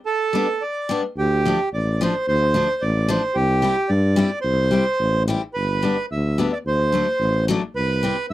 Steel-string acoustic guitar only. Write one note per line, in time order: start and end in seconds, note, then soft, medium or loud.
0.33 0.45 G3 soft
0.33 0.46 B3 soft
0.33 0.46 D4 medium
0.89 1.01 G3 medium
0.89 1.02 B3 medium
0.89 1.02 D4 medium
1.46 1.58 F3 soft
1.46 1.58 A3 medium
1.46 1.59 D4 medium
2.01 2.13 F3 medium
2.01 2.13 A3 medium
2.01 2.14 D4 medium
2.54 2.67 F3 medium
2.54 2.67 A3 medium
2.54 2.67 D4 medium
3.08 3.21 F3 medium
3.08 3.21 A3 medium
3.08 3.21 D4 medium
3.62 3.74 G3 medium
3.62 3.75 C4 soft
3.62 3.76 E4 medium
4.16 4.28 G3 medium
4.16 4.29 C4 medium
4.16 4.30 E4 medium
4.71 4.83 G3 medium
4.71 4.84 C4 soft
4.71 4.84 E4 medium
5.28 5.40 G3 medium
5.28 5.40 C4 medium
5.28 5.41 E4 medium
5.82 5.95 G3 soft
5.82 5.95 B3 soft
5.82 5.96 D4 medium
6.38 6.50 G3 medium
6.38 6.51 B3 medium
6.38 6.51 D4 medium
6.92 7.05 F#3 soft
6.92 7.06 A3 medium
6.92 7.06 D4 medium
7.48 7.60 F#3 medium
7.48 7.61 A3 medium
7.48 7.61 D4 medium
8.03 8.15 G3 medium
8.03 8.15 C4 medium
8.03 8.16 E4 medium